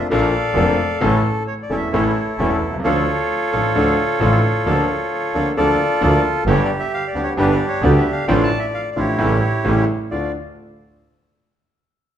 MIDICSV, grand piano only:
0, 0, Header, 1, 2, 480
1, 0, Start_track
1, 0, Key_signature, -1, "minor"
1, 0, Tempo, 454545
1, 1072, Time_signature, 4, 2, 24, 8
1, 12860, End_track
2, 0, Start_track
2, 0, Title_t, "Grand piano"
2, 0, Program_c, 0, 0
2, 111, Note_on_c, 0, 53, 87
2, 117, Note_on_c, 0, 58, 76
2, 120, Note_on_c, 0, 34, 102
2, 120, Note_on_c, 0, 62, 80
2, 121, Note_on_c, 0, 46, 103
2, 125, Note_on_c, 0, 69, 84
2, 314, Note_off_c, 0, 53, 0
2, 316, Note_off_c, 0, 58, 0
2, 318, Note_off_c, 0, 34, 0
2, 318, Note_off_c, 0, 62, 0
2, 319, Note_off_c, 0, 46, 0
2, 320, Note_off_c, 0, 69, 0
2, 594, Note_on_c, 0, 58, 73
2, 595, Note_on_c, 0, 53, 85
2, 596, Note_on_c, 0, 41, 95
2, 597, Note_on_c, 0, 62, 70
2, 599, Note_on_c, 0, 29, 100
2, 601, Note_on_c, 0, 69, 91
2, 794, Note_off_c, 0, 53, 0
2, 794, Note_off_c, 0, 58, 0
2, 795, Note_off_c, 0, 41, 0
2, 796, Note_off_c, 0, 62, 0
2, 797, Note_off_c, 0, 29, 0
2, 798, Note_off_c, 0, 69, 0
2, 1064, Note_on_c, 0, 52, 87
2, 1065, Note_on_c, 0, 57, 83
2, 1068, Note_on_c, 0, 61, 81
2, 1070, Note_on_c, 0, 33, 106
2, 1071, Note_on_c, 0, 45, 102
2, 1077, Note_on_c, 0, 69, 100
2, 1270, Note_off_c, 0, 52, 0
2, 1270, Note_off_c, 0, 57, 0
2, 1272, Note_off_c, 0, 61, 0
2, 1273, Note_off_c, 0, 33, 0
2, 1273, Note_off_c, 0, 45, 0
2, 1276, Note_off_c, 0, 69, 0
2, 1790, Note_on_c, 0, 28, 54
2, 1792, Note_on_c, 0, 52, 52
2, 1792, Note_on_c, 0, 57, 45
2, 1794, Note_on_c, 0, 69, 51
2, 1795, Note_on_c, 0, 40, 63
2, 1798, Note_on_c, 0, 61, 45
2, 1992, Note_off_c, 0, 28, 0
2, 1993, Note_off_c, 0, 52, 0
2, 1993, Note_off_c, 0, 57, 0
2, 1994, Note_off_c, 0, 69, 0
2, 1995, Note_off_c, 0, 40, 0
2, 1996, Note_off_c, 0, 61, 0
2, 2035, Note_on_c, 0, 52, 76
2, 2040, Note_on_c, 0, 61, 75
2, 2043, Note_on_c, 0, 57, 70
2, 2046, Note_on_c, 0, 69, 94
2, 2049, Note_on_c, 0, 33, 94
2, 2049, Note_on_c, 0, 45, 90
2, 2235, Note_off_c, 0, 52, 0
2, 2238, Note_off_c, 0, 61, 0
2, 2239, Note_off_c, 0, 57, 0
2, 2241, Note_off_c, 0, 69, 0
2, 2242, Note_off_c, 0, 33, 0
2, 2242, Note_off_c, 0, 45, 0
2, 2528, Note_on_c, 0, 52, 79
2, 2530, Note_on_c, 0, 57, 76
2, 2531, Note_on_c, 0, 28, 91
2, 2534, Note_on_c, 0, 61, 77
2, 2535, Note_on_c, 0, 40, 96
2, 2538, Note_on_c, 0, 69, 81
2, 2724, Note_off_c, 0, 52, 0
2, 2724, Note_off_c, 0, 57, 0
2, 2725, Note_off_c, 0, 28, 0
2, 2727, Note_off_c, 0, 40, 0
2, 2727, Note_off_c, 0, 61, 0
2, 2729, Note_off_c, 0, 69, 0
2, 2836, Note_on_c, 0, 35, 52
2, 2886, Note_off_c, 0, 35, 0
2, 2890, Note_on_c, 0, 36, 67
2, 2943, Note_off_c, 0, 36, 0
2, 2953, Note_on_c, 0, 37, 73
2, 3005, Note_off_c, 0, 37, 0
2, 3006, Note_on_c, 0, 53, 88
2, 3011, Note_on_c, 0, 50, 97
2, 3011, Note_on_c, 0, 57, 82
2, 3013, Note_on_c, 0, 38, 96
2, 3013, Note_on_c, 0, 69, 90
2, 3014, Note_on_c, 0, 62, 83
2, 3203, Note_off_c, 0, 53, 0
2, 3205, Note_off_c, 0, 50, 0
2, 3206, Note_off_c, 0, 38, 0
2, 3206, Note_off_c, 0, 57, 0
2, 3206, Note_off_c, 0, 69, 0
2, 3207, Note_off_c, 0, 62, 0
2, 3733, Note_on_c, 0, 45, 61
2, 3733, Note_on_c, 0, 62, 47
2, 3734, Note_on_c, 0, 57, 45
2, 3737, Note_on_c, 0, 33, 63
2, 3737, Note_on_c, 0, 53, 49
2, 3743, Note_on_c, 0, 69, 55
2, 3926, Note_off_c, 0, 45, 0
2, 3926, Note_off_c, 0, 62, 0
2, 3927, Note_off_c, 0, 57, 0
2, 3928, Note_off_c, 0, 33, 0
2, 3928, Note_off_c, 0, 53, 0
2, 3931, Note_off_c, 0, 69, 0
2, 3965, Note_on_c, 0, 57, 72
2, 3968, Note_on_c, 0, 69, 86
2, 3969, Note_on_c, 0, 53, 85
2, 3970, Note_on_c, 0, 38, 96
2, 3971, Note_on_c, 0, 50, 97
2, 3973, Note_on_c, 0, 62, 77
2, 4162, Note_off_c, 0, 57, 0
2, 4163, Note_off_c, 0, 69, 0
2, 4164, Note_off_c, 0, 53, 0
2, 4165, Note_off_c, 0, 38, 0
2, 4165, Note_off_c, 0, 50, 0
2, 4166, Note_off_c, 0, 62, 0
2, 4438, Note_on_c, 0, 33, 91
2, 4439, Note_on_c, 0, 69, 90
2, 4443, Note_on_c, 0, 53, 77
2, 4443, Note_on_c, 0, 62, 77
2, 4444, Note_on_c, 0, 45, 92
2, 4444, Note_on_c, 0, 57, 65
2, 4639, Note_off_c, 0, 33, 0
2, 4640, Note_off_c, 0, 69, 0
2, 4641, Note_off_c, 0, 62, 0
2, 4642, Note_off_c, 0, 45, 0
2, 4642, Note_off_c, 0, 53, 0
2, 4642, Note_off_c, 0, 57, 0
2, 4922, Note_on_c, 0, 62, 78
2, 4923, Note_on_c, 0, 58, 70
2, 4926, Note_on_c, 0, 50, 92
2, 4926, Note_on_c, 0, 53, 86
2, 4928, Note_on_c, 0, 38, 95
2, 4933, Note_on_c, 0, 69, 95
2, 5121, Note_off_c, 0, 58, 0
2, 5121, Note_off_c, 0, 62, 0
2, 5122, Note_off_c, 0, 53, 0
2, 5123, Note_off_c, 0, 50, 0
2, 5124, Note_off_c, 0, 38, 0
2, 5126, Note_off_c, 0, 69, 0
2, 5647, Note_on_c, 0, 53, 48
2, 5651, Note_on_c, 0, 50, 58
2, 5652, Note_on_c, 0, 69, 60
2, 5653, Note_on_c, 0, 62, 44
2, 5654, Note_on_c, 0, 38, 57
2, 5655, Note_on_c, 0, 58, 45
2, 5842, Note_off_c, 0, 53, 0
2, 5844, Note_off_c, 0, 50, 0
2, 5844, Note_off_c, 0, 69, 0
2, 5845, Note_off_c, 0, 38, 0
2, 5845, Note_off_c, 0, 62, 0
2, 5846, Note_off_c, 0, 58, 0
2, 5883, Note_on_c, 0, 58, 67
2, 5885, Note_on_c, 0, 50, 96
2, 5885, Note_on_c, 0, 53, 83
2, 5886, Note_on_c, 0, 62, 72
2, 5888, Note_on_c, 0, 69, 83
2, 5890, Note_on_c, 0, 38, 92
2, 6079, Note_off_c, 0, 58, 0
2, 6080, Note_off_c, 0, 50, 0
2, 6080, Note_off_c, 0, 53, 0
2, 6081, Note_off_c, 0, 62, 0
2, 6081, Note_off_c, 0, 69, 0
2, 6082, Note_off_c, 0, 38, 0
2, 6346, Note_on_c, 0, 58, 84
2, 6348, Note_on_c, 0, 50, 95
2, 6349, Note_on_c, 0, 53, 85
2, 6354, Note_on_c, 0, 38, 104
2, 6354, Note_on_c, 0, 69, 91
2, 6355, Note_on_c, 0, 62, 81
2, 6550, Note_off_c, 0, 58, 0
2, 6551, Note_off_c, 0, 50, 0
2, 6552, Note_off_c, 0, 53, 0
2, 6554, Note_off_c, 0, 38, 0
2, 6554, Note_off_c, 0, 69, 0
2, 6555, Note_off_c, 0, 62, 0
2, 6832, Note_on_c, 0, 55, 89
2, 6833, Note_on_c, 0, 50, 88
2, 6837, Note_on_c, 0, 43, 105
2, 6840, Note_on_c, 0, 67, 101
2, 6842, Note_on_c, 0, 31, 102
2, 6842, Note_on_c, 0, 59, 81
2, 7032, Note_off_c, 0, 55, 0
2, 7033, Note_off_c, 0, 50, 0
2, 7035, Note_off_c, 0, 43, 0
2, 7036, Note_off_c, 0, 67, 0
2, 7037, Note_off_c, 0, 31, 0
2, 7037, Note_off_c, 0, 59, 0
2, 7551, Note_on_c, 0, 50, 64
2, 7551, Note_on_c, 0, 55, 53
2, 7554, Note_on_c, 0, 67, 60
2, 7559, Note_on_c, 0, 38, 56
2, 7560, Note_on_c, 0, 59, 47
2, 7751, Note_off_c, 0, 55, 0
2, 7752, Note_off_c, 0, 67, 0
2, 7753, Note_off_c, 0, 50, 0
2, 7755, Note_off_c, 0, 38, 0
2, 7755, Note_off_c, 0, 59, 0
2, 7788, Note_on_c, 0, 31, 99
2, 7789, Note_on_c, 0, 50, 91
2, 7793, Note_on_c, 0, 55, 73
2, 7797, Note_on_c, 0, 43, 101
2, 7799, Note_on_c, 0, 59, 80
2, 7799, Note_on_c, 0, 67, 94
2, 7989, Note_off_c, 0, 31, 0
2, 7989, Note_off_c, 0, 50, 0
2, 7991, Note_off_c, 0, 55, 0
2, 7993, Note_off_c, 0, 43, 0
2, 7994, Note_off_c, 0, 59, 0
2, 7994, Note_off_c, 0, 67, 0
2, 8268, Note_on_c, 0, 38, 100
2, 8268, Note_on_c, 0, 50, 96
2, 8276, Note_on_c, 0, 55, 87
2, 8276, Note_on_c, 0, 67, 92
2, 8277, Note_on_c, 0, 59, 81
2, 8468, Note_off_c, 0, 38, 0
2, 8469, Note_off_c, 0, 50, 0
2, 8471, Note_off_c, 0, 55, 0
2, 8471, Note_off_c, 0, 67, 0
2, 8472, Note_off_c, 0, 59, 0
2, 8744, Note_on_c, 0, 53, 83
2, 8745, Note_on_c, 0, 50, 88
2, 8748, Note_on_c, 0, 57, 86
2, 8749, Note_on_c, 0, 65, 96
2, 8752, Note_on_c, 0, 33, 108
2, 8752, Note_on_c, 0, 45, 102
2, 8945, Note_off_c, 0, 53, 0
2, 8946, Note_off_c, 0, 50, 0
2, 8947, Note_off_c, 0, 57, 0
2, 8948, Note_off_c, 0, 65, 0
2, 8949, Note_off_c, 0, 33, 0
2, 8949, Note_off_c, 0, 45, 0
2, 9466, Note_on_c, 0, 50, 51
2, 9467, Note_on_c, 0, 33, 66
2, 9467, Note_on_c, 0, 53, 44
2, 9467, Note_on_c, 0, 57, 49
2, 9469, Note_on_c, 0, 45, 57
2, 9476, Note_on_c, 0, 65, 52
2, 9668, Note_off_c, 0, 50, 0
2, 9669, Note_off_c, 0, 33, 0
2, 9669, Note_off_c, 0, 53, 0
2, 9669, Note_off_c, 0, 57, 0
2, 9670, Note_off_c, 0, 45, 0
2, 9673, Note_off_c, 0, 65, 0
2, 9697, Note_on_c, 0, 49, 79
2, 9698, Note_on_c, 0, 57, 69
2, 9699, Note_on_c, 0, 55, 72
2, 9700, Note_on_c, 0, 45, 94
2, 9700, Note_on_c, 0, 64, 89
2, 9701, Note_on_c, 0, 33, 90
2, 9905, Note_off_c, 0, 49, 0
2, 9906, Note_off_c, 0, 45, 0
2, 9906, Note_off_c, 0, 55, 0
2, 9906, Note_off_c, 0, 57, 0
2, 9906, Note_off_c, 0, 64, 0
2, 9907, Note_off_c, 0, 33, 0
2, 10187, Note_on_c, 0, 45, 82
2, 10187, Note_on_c, 0, 49, 75
2, 10188, Note_on_c, 0, 33, 93
2, 10191, Note_on_c, 0, 55, 68
2, 10191, Note_on_c, 0, 64, 88
2, 10192, Note_on_c, 0, 57, 73
2, 10392, Note_off_c, 0, 33, 0
2, 10392, Note_off_c, 0, 45, 0
2, 10392, Note_off_c, 0, 49, 0
2, 10394, Note_off_c, 0, 55, 0
2, 10394, Note_off_c, 0, 64, 0
2, 10395, Note_off_c, 0, 57, 0
2, 10679, Note_on_c, 0, 38, 57
2, 10680, Note_on_c, 0, 65, 70
2, 10686, Note_on_c, 0, 57, 54
2, 10688, Note_on_c, 0, 62, 55
2, 10878, Note_off_c, 0, 38, 0
2, 10878, Note_off_c, 0, 65, 0
2, 10882, Note_off_c, 0, 57, 0
2, 10883, Note_off_c, 0, 62, 0
2, 12860, End_track
0, 0, End_of_file